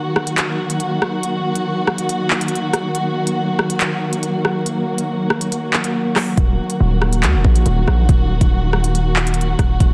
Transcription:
Already playing: string section D#3 F#3 A#3 F#4
0.16 cross-stick
0.27 closed hi-hat
0.37 clap, closed hi-hat
0.70 closed hi-hat
0.80 closed hi-hat
1.02 cross-stick
1.23 closed hi-hat
1.55 closed hi-hat
1.87 cross-stick
1.98 closed hi-hat
2.09 closed hi-hat
2.30 clap
2.41 closed hi-hat
2.48 closed hi-hat
2.55 closed hi-hat
2.73 cross-stick, closed hi-hat
2.95 closed hi-hat
3.27 closed hi-hat
3.59 cross-stick
3.70 closed hi-hat
3.80 clap, closed hi-hat
4.13 closed hi-hat
4.23 closed hi-hat
4.45 cross-stick
4.66 closed hi-hat
4.98 closed hi-hat
5.30 cross-stick
5.41 closed hi-hat
5.52 closed hi-hat
5.73 clap
5.84 closed hi-hat
6.16 cross-stick, clap, open hi-hat
6.37 808-style bass D#1, string section D#3 F#4, kick, closed hi-hat
6.70 closed hi-hat
6.80 808-style bass D#1
7.02 cross-stick
7.13 closed hi-hat
7.23 808-style bass D#2, clap, closed hi-hat
7.34 808-style bass D#1
7.45 808-style bass A#1, kick
7.56 closed hi-hat
7.66 808-style bass D#1, closed hi-hat
7.87 808-style bass A#1, cross-stick
8.09 808-style bass D#1, kick, closed hi-hat
8.41 808-style bass D#1, kick, closed hi-hat
8.73 cross-stick
8.84 closed hi-hat
8.95 closed hi-hat
9.16 clap
9.27 closed hi-hat
9.34 closed hi-hat
9.41 closed hi-hat
9.59 808-style bass D#1, kick, cross-stick, closed hi-hat
9.80 808-style bass D#1, string section D#3 F#3 A#3, kick, closed hi-hat

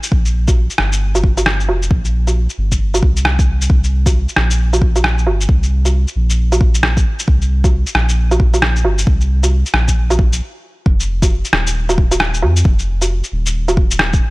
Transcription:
0.03 shaker
0.12 sub bass A#1, kick
0.25 shaker
0.48 kick, low woodblock, shaker
0.70 shaker
0.78 sub bass G1, cross-stick
0.92 shaker
1.15 low woodblock, shaker
1.24 kick
1.37 low woodblock, shaker
1.46 cross-stick
1.60 shaker
1.68 sub bass F1, low woodblock
1.83 shaker
1.91 sub bass A#1, kick
2.05 shaker
2.27 low woodblock, shaker
2.49 shaker
2.58 sub bass G1
2.72 kick, shaker
2.94 low woodblock, shaker
3.03 sub bass C2, kick
3.17 shaker
3.25 cross-stick
3.39 kick, shaker
3.61 shaker
3.70 sub bass C2, kick
3.84 shaker
4.06 kick, low woodblock, shaker
4.29 shaker
4.36 sub bass A#1, cross-stick
4.51 shaker
4.73 low woodblock, shaker
4.82 kick
4.96 low woodblock, shaker
5.04 cross-stick
5.18 shaker
5.26 sub bass G1, low woodblock
5.41 shaker
5.49 sub bass C2, kick
5.63 shaker
5.85 low woodblock, shaker
6.08 shaker
6.16 sub bass A#1
6.30 shaker
6.52 low woodblock, shaker
6.61 kick
6.75 shaker
6.83 cross-stick
6.97 kick, shaker
7.19 shaker
7.28 sub bass C2, kick
7.42 shaker
7.64 kick, low woodblock, shaker
7.87 shaker
7.95 sub bass A#1, cross-stick
8.09 shaker
8.31 low woodblock, shaker
8.40 kick
8.54 low woodblock, shaker
8.62 cross-stick
8.76 shaker
8.84 sub bass G1, low woodblock
8.98 shaker
9.07 sub bass C2, kick
9.21 shaker
9.43 low woodblock, shaker
9.66 shaker
9.73 sub bass A#1, cross-stick
9.88 kick, shaker
10.10 low woodblock, shaker
10.19 kick
10.33 shaker
10.86 sub bass F1, kick
11.00 shaker
11.22 kick, low woodblock, shaker
11.45 shaker
11.52 sub bass D#1, cross-stick
11.67 shaker
11.89 low woodblock, shaker
11.98 kick
12.11 low woodblock, shaker
12.20 cross-stick
12.34 shaker
12.42 sub bass F2, low woodblock
12.56 shaker
12.65 sub bass F1, kick
12.79 shaker
13.02 low woodblock, shaker
13.24 shaker
13.32 sub bass D#1
13.46 shaker
13.68 low woodblock, shaker
13.77 kick
13.91 shaker
13.99 cross-stick
14.13 kick, shaker

